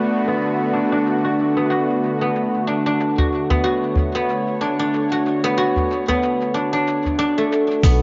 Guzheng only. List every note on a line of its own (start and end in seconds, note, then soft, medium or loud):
0.00 0.27 B3 medium
0.00 0.73 D4 medium
0.00 1.24 F#4 medium
0.28 1.56 B3 medium
0.73 0.92 D4 medium
0.92 2.67 D4 medium
1.24 1.70 F#4 medium
1.57 2.21 B3 medium
1.70 3.18 F#4 medium
2.21 3.50 B3 medium
2.67 2.86 D4 medium
2.86 4.61 D4 medium
3.18 3.63 F#4 medium
3.50 4.15 B3 medium
3.64 5.11 F#4 medium
4.15 5.43 B3 medium
4.61 4.79 D4 medium
4.79 6.54 D4 medium
5.12 5.57 F#4 medium
5.44 6.08 B3 loud
5.57 8.01 F#4 medium
6.08 7.83 B3 medium
6.54 6.72 D4 medium
6.73 7.18 D4 medium
7.19 8.02 D4 medium
7.38 8.02 A3 medium
7.83 8.02 B3 medium